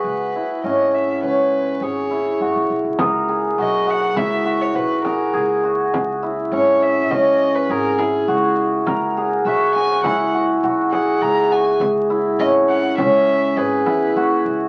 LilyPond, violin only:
\new Staff \with { instrumentName = "Violin" } { \time 5/4 \key cis \dorian \tempo 4 = 102 b'4 dis''8 e''8 b'4 cis''4. r8 | r4 dis''8 fis''8 e''8. cis''16 b'8 ais'4 r8 | r4 cis''8 e''8 dis''8. b'16 ais'8 gis'4 r8 | r4 e''8 gis''8 fis''8 r4 fis''8 ais''8 gis''8 |
r4 dis''8 fis''8 e''4 b'4. r8 | }